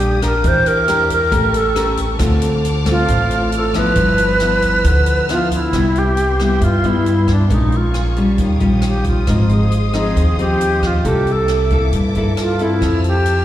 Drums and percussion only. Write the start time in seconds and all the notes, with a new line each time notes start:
0.00 closed hi-hat
0.22 kick, cross-stick, closed hi-hat
0.44 kick, closed hi-hat
0.66 closed hi-hat
0.88 cross-stick, closed hi-hat
1.10 kick, closed hi-hat
1.32 kick, closed hi-hat
1.54 closed hi-hat
1.76 cross-stick, closed hi-hat
1.97 kick, closed hi-hat
2.19 kick, cross-stick, closed hi-hat
2.42 closed hi-hat
2.65 closed hi-hat
2.86 kick, cross-stick, closed hi-hat
3.08 kick, closed hi-hat
3.31 closed hi-hat
3.52 closed hi-hat
3.74 kick, cross-stick, closed hi-hat
3.95 kick, closed hi-hat
4.18 closed hi-hat
4.40 cross-stick, closed hi-hat
4.62 kick, closed hi-hat
4.84 kick, closed hi-hat
5.06 closed hi-hat
5.29 cross-stick, closed hi-hat
5.51 kick, closed hi-hat
5.73 kick, cross-stick, closed hi-hat
5.95 closed hi-hat
6.17 closed hi-hat
6.39 cross-stick, closed hi-hat
6.61 kick, closed hi-hat
6.84 closed hi-hat
7.06 closed hi-hat
7.28 kick, cross-stick, closed hi-hat
7.50 kick, closed hi-hat
7.72 closed hi-hat
7.94 cross-stick, closed hi-hat
8.16 closed hi-hat
8.38 kick, closed hi-hat
8.60 closed hi-hat
8.82 cross-stick, closed hi-hat
9.04 kick, closed hi-hat
9.27 kick, cross-stick, closed hi-hat
9.49 closed hi-hat
9.72 closed hi-hat
9.93 cross-stick, closed hi-hat
10.16 kick, closed hi-hat
10.39 closed hi-hat
10.61 closed hi-hat
10.83 kick, cross-stick, closed hi-hat
11.05 kick, closed hi-hat
11.27 closed hi-hat
11.48 cross-stick, closed hi-hat
11.70 kick, closed hi-hat
11.93 kick, closed hi-hat
12.15 closed hi-hat
12.37 cross-stick, closed hi-hat
12.59 closed hi-hat
12.82 kick, cross-stick, closed hi-hat
13.04 closed hi-hat
13.26 closed hi-hat